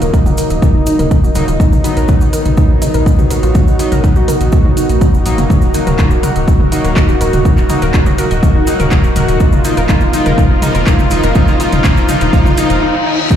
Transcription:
Already playing: D#3 F#3 A#3 D#4
0.02 D#1 A#4, closed hi-hat, cabasa
0.13 D#4, kick, closed hi-hat, cabasa
0.26 D#1 F#4, mid tom, cabasa
0.37 A#4, open hi-hat, cabasa
0.50 D#1 D#5, closed hi-hat, cabasa
0.62 D#4, kick, closed hi-hat, mid tom, cabasa
0.75 D#1 D#4
0.86 D#4, open hi-hat, cabasa
0.99 D#1 A#4, closed hi-hat, mid tom, cabasa
1.11 D#4, kick, closed hi-hat, cabasa
1.24 D#1 F#4, cabasa
1.35 D#1 F#3 A#3 D#4 A#4, open hi-hat, mid tom, cabasa
1.48 D#1 F4, closed hi-hat, cabasa
1.60 F#3 D#4, kick, closed hi-hat, cabasa
1.72 B1 D#4, mid tom, cabasa
1.84 F#3 B3 D#4, open hi-hat, cabasa
1.97 B1 A#4, closed hi-hat, cabasa
2.08 D#4, kick, closed hi-hat, mid tom, cabasa
2.21 B1 F#4, cabasa
2.33 D#4 A#4, open hi-hat, cabasa
2.45 B1 D#5, closed hi-hat, mid tom, cabasa
2.57 D#4, kick, closed hi-hat, cabasa
2.70 B1 D#4
2.82 D#4, open hi-hat, mid tom, cabasa
2.94 B1 A#4, closed hi-hat, cabasa
3.06 D#4, kick, closed hi-hat, cabasa
3.19 B1 F#4, mid tom, cabasa
3.30 B1 F#4 A#4, open hi-hat, cabasa
3.43 B1 F4, closed hi-hat, cabasa
3.55 D#4 A#4, kick, closed hi-hat, mid tom, cabasa
3.67 B1 D#4, cabasa
3.79 F#3 B3 D#4, open hi-hat, cabasa
3.92 B1 A#4, closed hi-hat, mid tom, cabasa
4.04 D#4 F#4, kick, closed hi-hat, cabasa
4.16 B1 F#4, cabasa
4.28 A#4, open hi-hat, mid tom, cabasa
4.41 B1 D#5, closed hi-hat, cabasa
4.52 D#4, kick, closed hi-hat, cabasa
4.65 B1 D#4, mid tom
4.77 D#4, open hi-hat, cabasa
4.89 B1 A#3, closed hi-hat, cabasa
5.01 D#4, kick, closed hi-hat, mid tom, cabasa
5.14 F#1 F#4, cabasa
5.26 B1 F#3 A#3 D#4 F4, open hi-hat, cabasa
5.38 F#1 A#3, closed hi-hat, mid tom, cabasa
5.50 D#3 D#4 F#4, kick, closed hi-hat, mid tom, riser, cabasa
5.62 D#1 D#4, cabasa
5.74 F#3 A#3 D#4, open hi-hat, cabasa
5.87 D#1 A#4, closed hi-hat, mid tom, cabasa
5.99 D#4, kick, clap, closed hi-hat, cabasa
6.11 D#1 F#4, cabasa
6.23 F#4 A#4, open hi-hat, mid tom, cabasa
6.36 D#1 D#5, closed hi-hat, cabasa
6.48 D#4 F#4, kick, closed hi-hat, cabasa
6.60 D#1 D#4, mid tom
6.72 F#3 A#3 D#4, open hi-hat, cabasa
6.84 D#1 A#4, closed hi-hat, cabasa
6.96 D#4, kick, clap, closed hi-hat, mid tom, cabasa
7.09 D#1 F#4, cabasa
7.21 D#1 F#4 A#4, open hi-hat, cabasa
7.33 D#1 D#5, closed hi-hat, mid tom, cabasa
7.45 D#4 F#4, kick, closed hi-hat, cabasa
7.58 D#1 D#4, clap, cabasa
7.69 F#3 A#3 D#4, open hi-hat, mid tom, cabasa
7.82 D#1 A#4, closed hi-hat, cabasa
7.94 D#4, kick, clap, closed hi-hat, cabasa
8.06 D#1 F#4, mid tom, cabasa
8.18 F#4 A#4, open hi-hat, cabasa
8.31 D#1 D#5, closed hi-hat, cabasa
8.43 D#4 F#4, kick, closed hi-hat, mid tom, cabasa
8.55 D#1 D#4
8.67 F#3 A#3 D#4, open hi-hat, cabasa
8.80 D#1 A#4, closed hi-hat, mid tom, cabasa
8.91 D#4, kick, clap, closed hi-hat, cabasa
9.04 D#1 F#4, cabasa
9.16 D#1 F#4 A#4, open hi-hat, mid tom, cabasa
9.28 D#1 D#5, closed hi-hat, cabasa
9.40 B2 G#3 D#4 F4, kick, closed hi-hat, cabasa
9.52 F1 D#4, mid tom, cabasa
9.64 F3 A#3 D#4, open hi-hat, cabasa
9.77 F1 A#4, closed hi-hat, cabasa
9.89 D#4 F4, kick, clap, closed hi-hat, mid tom, cabasa
10.01 F1 D#4, cabasa
10.13 F3 A#3 D#4, open hi-hat, cabasa
10.26 F1 A#4, closed hi-hat, mid tom, cabasa
10.38 D#4 F4, kick, closed hi-hat, cabasa
10.50 F1 D#4
10.62 F3 A#3 D#4, open hi-hat, mid tom, cabasa
10.75 F1 A#4, closed hi-hat, cabasa
10.87 D#4 F4, kick, clap, closed hi-hat, cabasa
10.99 F1 D#4, mid tom, cabasa
11.10 F1 F3 A#3 D#4, open hi-hat, cabasa
11.23 F1 A#4, closed hi-hat, cabasa
11.35 F3 A#3 D#4 F4, kick, closed hi-hat, mid tom, cabasa
11.48 F1 D#4, clap, cabasa
11.60 F3 A#3 D#4 F4, open hi-hat, cabasa
11.72 F1 D#4, closed hi-hat, mid tom, cabasa
11.84 F3 A#3 D#4 F4, kick, clap, closed hi-hat, cabasa
11.97 F1 D#4, cabasa
12.09 F3 A#3 D#4 F4, open hi-hat, mid tom, cabasa
12.21 F1 D#4, closed hi-hat, cabasa
12.33 F3 A#3 D#4 F4, kick, closed hi-hat, reverse cymbal, cabasa
12.46 F1 D#4, mid tom, cabasa
12.57 F3 A#3 D#4 F4, open hi-hat, cabasa
12.70 F1 D#4, closed hi-hat, cabasa
12.82 D#4
12.94 D#4
13.06 D#4
13.19 D#4
13.31 D#3 D#4 F#4 A#4, kick, closed hi-hat, mid tom, cabasa

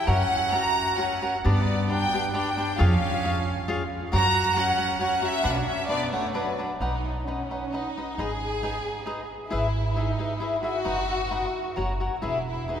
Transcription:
Already playing: E4
0.06 F#2 C#4 F#4 A#4 C#5 F#5
0.51 F#4 A#4 C#5 F#5 A#5
0.97 C#4 F#4 A#4 C#5 F#5
1.22 F#4 A#4 C#5 F#5
1.45 G2 B3 D4 G4 B4 D5
1.89 D4 G4 B4 D5 G5
2.13 D4 G4 B4 D5
2.33 D4 G4 B4 D5 G5
2.57 D4 G4 B4 D5
2.78 F2 C#4 F4 G#4 C#5 F5
3.24 F4 G#4 C#5 F5
3.68 F4 G#4 C#5 F5
4.12 F#2 F#4 A#4 C#5 F#5 A#5
4.56 C#4 F#4 A#4 C#5 F#5
4.77 F#4 A#4 C#5 F#5
4.99 C#4 F#4 A#4 C#5 F#5
5.22 C#4 F#4 A#4 C#5 E5 F#5
5.43 B1 D4 B4 D5 F#5
5.50 C#4 E5
5.55 D4 F#5
5.60 D4 F#5
5.66 C#4 E5
5.88 B3 D4 B4 D5 F#5
6.12 A3 D4 B4 C#5 D5 F#5
6.34 F#3 D4 B4 D5 F#5
6.58 D4 B4 D5 F#5
6.80 B1 D#4 B4 D#5 F#5
7.19 D#4
7.25 C#4 D#4 B4 D#5 F#5
7.51 D#4 B4 D#5 F#5
7.73 D#4 B4 D#5 F#5
7.97 D#4 B4 D#5 F#5
8.18 G#1 D#4 G#4 B4 D#5
8.63 D#4 G#4 B4 D#5
9.06 D#4 G#4 B4 D#5
9.50 G#1 E4 G#4 B4 E5
9.96 D#4 E4 G#4 B4 E5
10.19 E4 G#4 B4 E5
10.40 E4 G#4 B4 E5
10.63 E4 F#4 G#4 B4 E5
10.84 F#1 D#4 B4 D#5 F#5
11.31 D#4 B4 D#5 F#5
11.76 F#1 F#4 A#4 C#5 F#5
12.00 F#4 A#4 C#5 F#5
12.22 E1 E4 G#4 B4 E5
12.48 E4
12.68 E4 G#4 B4 E5
12.72 D#4

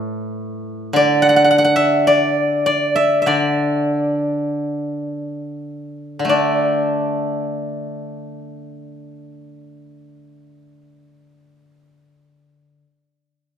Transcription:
Already playing: A2 A4
0.93 D3 D5
1.22 F#5
1.29 F#5
1.36 F#5
1.44 F#5
1.51 F#5
1.58 F#5
1.64 F#5
1.76 E5
2.07 D5
2.66 D5
2.96 E5
3.22 E5
3.26 D3 D5
6.19 D3
6.25 A3
6.29 D4 D5

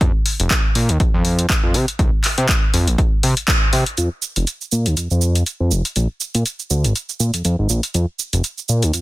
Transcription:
0.01 F2, kick, closed hi-hat
0.26 open hi-hat
0.40 F1, closed hi-hat
0.50 kick, clap, closed hi-hat
0.75 A#2, open hi-hat
0.89 D#2, closed hi-hat
1.00 F2, kick, closed hi-hat
1.14 F2
1.25 open hi-hat
1.39 closed hi-hat
1.50 kick, clap, closed hi-hat
1.63 F2
1.74 C3, open hi-hat
1.88 closed hi-hat
1.99 C2, kick, closed hi-hat
2.24 clap, open hi-hat
2.38 C3, closed hi-hat
2.49 kick, clap, closed hi-hat
2.74 F2, open hi-hat
2.87 A#1, closed hi-hat
2.98 kick, closed hi-hat
3.23 C3, open hi-hat
3.37 closed hi-hat
3.48 kick, clap, closed hi-hat
3.73 C3, open hi-hat
3.86 closed hi-hat
3.97 F2, closed hi-hat, shaker
4.22 shaker
4.36 F1, closed hi-hat, shaker
4.47 closed hi-hat, shaker
4.61 shaker
4.72 A#2, shaker
4.86 D#2, closed hi-hat, shaker
4.97 F2, closed hi-hat, shaker
5.11 F2, shaker
5.22 shaker
5.35 closed hi-hat, shaker
5.46 closed hi-hat, shaker
5.60 F2
5.71 F1, shaker
5.85 closed hi-hat, shaker
5.96 A#1, closed hi-hat, shaker
6.21 shaker
6.35 A#2, closed hi-hat, shaker
6.46 closed hi-hat, shaker
6.60 shaker
6.70 D2, shaker
6.84 G#1, closed hi-hat, shaker
6.96 closed hi-hat, shaker
7.09 shaker
7.20 A#2, shaker
7.34 F2, closed hi-hat, shaker
7.45 F2, closed hi-hat, shaker
7.59 G#1
7.69 A#1, shaker
7.83 closed hi-hat, shaker
7.94 F2, closed hi-hat, shaker
8.19 shaker
8.33 F1, closed hi-hat, shaker
8.44 closed hi-hat, shaker
8.58 shaker
8.69 A#2, shaker
8.83 D#2, closed hi-hat, shaker
8.94 F2, closed hi-hat, shaker

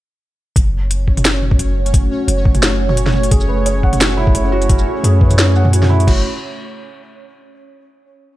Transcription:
0.56 F#1 A3 C#4 F#4 C#5, kick, closed hi-hat
0.91 closed hi-hat
1.08 kick
1.17 closed hi-hat, mid tom
1.25 snare, closed hi-hat
1.42 mid tom
1.51 kick
1.59 F#1, closed hi-hat
1.86 closed hi-hat
1.94 kick, closed hi-hat
2.28 F#1, closed hi-hat
2.45 kick
2.55 closed hi-hat, mid tom
2.63 snare, closed hi-hat
2.89 mid tom
2.97 closed hi-hat
3.06 snare, mid tom
3.14 mid tom
3.23 closed hi-hat
3.31 F#1 E4 G#4, kick, closed hi-hat
3.41 shaker
3.48 B4
3.66 C#5, closed hi-hat
3.83 F#5, kick
3.93 closed hi-hat, mid tom
4.00 F#4, snare, closed hi-hat, mid tom
4.10 shaker
4.17 E4, mid tom
4.27 kick
4.35 F#1 C#5, closed hi-hat
4.52 F#4
4.62 closed hi-hat, shaker
4.69 C#4, kick, closed hi-hat
4.79 shaker
4.87 F#4
5.04 F#2 G#4, closed hi-hat
5.21 B4, kick
5.31 closed hi-hat, mid tom, shaker
5.38 C#5, snare, closed hi-hat
5.56 F#5, shaker
5.65 mid tom
5.73 F#4, closed hi-hat
5.82 snare, mid tom
5.90 E4, mid tom
6.00 closed hi-hat
6.07 F#1 F#4, kick, crash

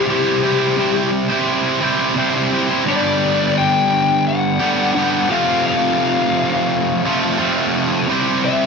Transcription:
Already playing: G4
0.07 C3 G3 C4 E4 G4 C5
0.42 C4 E4 G4 C5
0.77 C3 G3 C4 E4 G4 C5
0.94 C4 E4 G4 C5
1.12 muted distorted electric guitar stroke
1.29 C4 E4 G4 C5
1.81 C4 E4 G4 C5
2.16 C3 G3 C4 E4 G4 C5
2.33 C4 E4 G4 C5
2.50 C4 E4 G4 C5
2.68 C4 E4 G4 C5
2.85 G2 D3 G3 B3 D4 G4
2.90 D5
3.58 G5
4.28 F#5
4.60 G2 D3 G3 B3 D4 G4
4.94 G2 D3 G3 B3 D4
4.99 G4
5.29 F2 C3 F3 A3 C4 F4 F5
5.67 F5
7.03 F2 C3 F3 A3 C4
7.07 F4
7.38 F2 C3 F3 A3 C4 F4
8.08 C3 G3 C4 E4 G4
8.12 C5
8.45 E5

